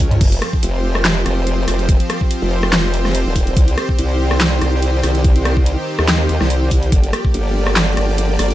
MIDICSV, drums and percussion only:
0, 0, Header, 1, 2, 480
1, 0, Start_track
1, 0, Tempo, 419580
1, 240, Time_signature, 4, 2, 24, 8
1, 9771, End_track
2, 0, Start_track
2, 0, Title_t, "Drums"
2, 130, Note_on_c, 9, 42, 40
2, 130, Note_on_c, 9, 45, 84
2, 239, Note_off_c, 9, 42, 0
2, 239, Note_on_c, 9, 36, 117
2, 239, Note_on_c, 9, 42, 82
2, 239, Note_on_c, 9, 49, 77
2, 244, Note_off_c, 9, 45, 0
2, 354, Note_off_c, 9, 36, 0
2, 354, Note_off_c, 9, 42, 0
2, 354, Note_off_c, 9, 49, 0
2, 368, Note_on_c, 9, 42, 55
2, 479, Note_off_c, 9, 42, 0
2, 479, Note_on_c, 9, 37, 78
2, 479, Note_on_c, 9, 42, 55
2, 593, Note_off_c, 9, 37, 0
2, 593, Note_off_c, 9, 42, 0
2, 609, Note_on_c, 9, 36, 64
2, 719, Note_on_c, 9, 42, 82
2, 724, Note_off_c, 9, 36, 0
2, 834, Note_off_c, 9, 42, 0
2, 1089, Note_on_c, 9, 37, 76
2, 1199, Note_on_c, 9, 38, 126
2, 1199, Note_on_c, 9, 39, 94
2, 1199, Note_on_c, 9, 42, 83
2, 1203, Note_off_c, 9, 37, 0
2, 1314, Note_off_c, 9, 38, 0
2, 1314, Note_off_c, 9, 39, 0
2, 1314, Note_off_c, 9, 42, 0
2, 1440, Note_on_c, 9, 37, 53
2, 1440, Note_on_c, 9, 42, 65
2, 1554, Note_off_c, 9, 37, 0
2, 1554, Note_off_c, 9, 42, 0
2, 1680, Note_on_c, 9, 42, 82
2, 1794, Note_off_c, 9, 42, 0
2, 1920, Note_on_c, 9, 37, 51
2, 1920, Note_on_c, 9, 46, 96
2, 2034, Note_off_c, 9, 37, 0
2, 2034, Note_off_c, 9, 46, 0
2, 2049, Note_on_c, 9, 42, 39
2, 2159, Note_off_c, 9, 42, 0
2, 2159, Note_on_c, 9, 42, 79
2, 2160, Note_on_c, 9, 36, 120
2, 2274, Note_off_c, 9, 36, 0
2, 2274, Note_off_c, 9, 42, 0
2, 2289, Note_on_c, 9, 42, 55
2, 2399, Note_off_c, 9, 42, 0
2, 2399, Note_on_c, 9, 37, 76
2, 2399, Note_on_c, 9, 42, 55
2, 2514, Note_off_c, 9, 37, 0
2, 2514, Note_off_c, 9, 42, 0
2, 2529, Note_on_c, 9, 36, 64
2, 2640, Note_on_c, 9, 42, 81
2, 2644, Note_off_c, 9, 36, 0
2, 2754, Note_off_c, 9, 42, 0
2, 3010, Note_on_c, 9, 37, 76
2, 3120, Note_on_c, 9, 38, 124
2, 3120, Note_on_c, 9, 39, 95
2, 3120, Note_on_c, 9, 42, 82
2, 3124, Note_off_c, 9, 37, 0
2, 3235, Note_off_c, 9, 38, 0
2, 3235, Note_off_c, 9, 39, 0
2, 3235, Note_off_c, 9, 42, 0
2, 3360, Note_on_c, 9, 42, 65
2, 3475, Note_off_c, 9, 42, 0
2, 3490, Note_on_c, 9, 37, 51
2, 3490, Note_on_c, 9, 38, 39
2, 3599, Note_on_c, 9, 42, 82
2, 3604, Note_off_c, 9, 37, 0
2, 3604, Note_off_c, 9, 38, 0
2, 3714, Note_off_c, 9, 42, 0
2, 3840, Note_on_c, 9, 36, 66
2, 3840, Note_on_c, 9, 46, 93
2, 3954, Note_off_c, 9, 36, 0
2, 3954, Note_off_c, 9, 46, 0
2, 3970, Note_on_c, 9, 42, 37
2, 4080, Note_off_c, 9, 42, 0
2, 4080, Note_on_c, 9, 36, 123
2, 4080, Note_on_c, 9, 42, 75
2, 4194, Note_off_c, 9, 36, 0
2, 4194, Note_off_c, 9, 42, 0
2, 4209, Note_on_c, 9, 42, 52
2, 4320, Note_off_c, 9, 42, 0
2, 4320, Note_on_c, 9, 37, 79
2, 4320, Note_on_c, 9, 42, 52
2, 4434, Note_off_c, 9, 37, 0
2, 4434, Note_off_c, 9, 42, 0
2, 4449, Note_on_c, 9, 36, 65
2, 4560, Note_on_c, 9, 42, 77
2, 4564, Note_off_c, 9, 36, 0
2, 4674, Note_off_c, 9, 42, 0
2, 4930, Note_on_c, 9, 37, 76
2, 5040, Note_on_c, 9, 38, 126
2, 5040, Note_on_c, 9, 39, 96
2, 5040, Note_on_c, 9, 42, 81
2, 5044, Note_off_c, 9, 37, 0
2, 5154, Note_off_c, 9, 38, 0
2, 5154, Note_off_c, 9, 39, 0
2, 5154, Note_off_c, 9, 42, 0
2, 5280, Note_on_c, 9, 37, 53
2, 5280, Note_on_c, 9, 42, 62
2, 5394, Note_off_c, 9, 37, 0
2, 5394, Note_off_c, 9, 42, 0
2, 5520, Note_on_c, 9, 42, 79
2, 5634, Note_off_c, 9, 42, 0
2, 5760, Note_on_c, 9, 37, 52
2, 5760, Note_on_c, 9, 46, 90
2, 5874, Note_off_c, 9, 37, 0
2, 5874, Note_off_c, 9, 46, 0
2, 5889, Note_on_c, 9, 42, 36
2, 5999, Note_on_c, 9, 36, 120
2, 6000, Note_off_c, 9, 42, 0
2, 6000, Note_on_c, 9, 42, 78
2, 6114, Note_off_c, 9, 36, 0
2, 6114, Note_off_c, 9, 42, 0
2, 6129, Note_on_c, 9, 42, 50
2, 6239, Note_off_c, 9, 42, 0
2, 6239, Note_on_c, 9, 37, 83
2, 6239, Note_on_c, 9, 42, 52
2, 6353, Note_off_c, 9, 37, 0
2, 6353, Note_off_c, 9, 42, 0
2, 6369, Note_on_c, 9, 36, 65
2, 6479, Note_on_c, 9, 42, 76
2, 6484, Note_off_c, 9, 36, 0
2, 6593, Note_off_c, 9, 42, 0
2, 6849, Note_on_c, 9, 37, 80
2, 6959, Note_on_c, 9, 38, 127
2, 6959, Note_on_c, 9, 39, 87
2, 6959, Note_on_c, 9, 42, 78
2, 6963, Note_off_c, 9, 37, 0
2, 7074, Note_off_c, 9, 38, 0
2, 7074, Note_off_c, 9, 39, 0
2, 7074, Note_off_c, 9, 42, 0
2, 7198, Note_on_c, 9, 42, 60
2, 7313, Note_off_c, 9, 42, 0
2, 7328, Note_on_c, 9, 37, 54
2, 7328, Note_on_c, 9, 38, 39
2, 7438, Note_on_c, 9, 42, 76
2, 7443, Note_off_c, 9, 37, 0
2, 7443, Note_off_c, 9, 38, 0
2, 7553, Note_off_c, 9, 42, 0
2, 7679, Note_on_c, 9, 46, 92
2, 7680, Note_on_c, 9, 36, 64
2, 7793, Note_off_c, 9, 46, 0
2, 7794, Note_off_c, 9, 36, 0
2, 7808, Note_on_c, 9, 42, 36
2, 7919, Note_off_c, 9, 42, 0
2, 7919, Note_on_c, 9, 36, 119
2, 7919, Note_on_c, 9, 42, 75
2, 8033, Note_off_c, 9, 42, 0
2, 8034, Note_off_c, 9, 36, 0
2, 8049, Note_on_c, 9, 42, 53
2, 8159, Note_off_c, 9, 42, 0
2, 8159, Note_on_c, 9, 37, 83
2, 8159, Note_on_c, 9, 42, 50
2, 8273, Note_off_c, 9, 37, 0
2, 8273, Note_off_c, 9, 42, 0
2, 8289, Note_on_c, 9, 36, 63
2, 8399, Note_on_c, 9, 42, 78
2, 8404, Note_off_c, 9, 36, 0
2, 8514, Note_off_c, 9, 42, 0
2, 8769, Note_on_c, 9, 37, 85
2, 8879, Note_on_c, 9, 38, 120
2, 8879, Note_on_c, 9, 39, 86
2, 8879, Note_on_c, 9, 42, 78
2, 8883, Note_off_c, 9, 37, 0
2, 8993, Note_off_c, 9, 38, 0
2, 8993, Note_off_c, 9, 39, 0
2, 8993, Note_off_c, 9, 42, 0
2, 9119, Note_on_c, 9, 37, 55
2, 9119, Note_on_c, 9, 42, 59
2, 9234, Note_off_c, 9, 37, 0
2, 9234, Note_off_c, 9, 42, 0
2, 9360, Note_on_c, 9, 42, 77
2, 9474, Note_off_c, 9, 42, 0
2, 9600, Note_on_c, 9, 37, 56
2, 9600, Note_on_c, 9, 46, 98
2, 9714, Note_off_c, 9, 37, 0
2, 9714, Note_off_c, 9, 46, 0
2, 9729, Note_on_c, 9, 42, 37
2, 9771, Note_off_c, 9, 42, 0
2, 9771, End_track
0, 0, End_of_file